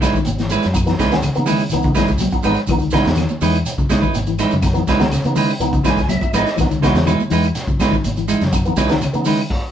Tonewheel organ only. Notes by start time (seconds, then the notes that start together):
0.74 B3 D#4
0.86 E3 B3 D#4
1.12 E3 B3 C#4
1.36 E3 B3 D#4
1.73 E3 B3 D#4
2.32 B3 D#4
2.46 E3 B3 D#4
2.71 E3 B3 D#4
2.93 E3 B3 D#4
4.62 B3 D#4
4.74 E3 B3 D#4
4.99 E3 B3 D#4
5.25 E3 B3 D#4
5.60 E3 B3 D#4
5.86 G#5
6.09 E5
6.22 B3 D#4
6.35 E3 B3 D#4 D#5
6.60 E3 B3 D#4
6.83 E3 B3 F#4
8.53 B3 D#4
8.65 E3 B3 D#4
8.90 E3 B3 D#4
9.13 E3 B3 D#4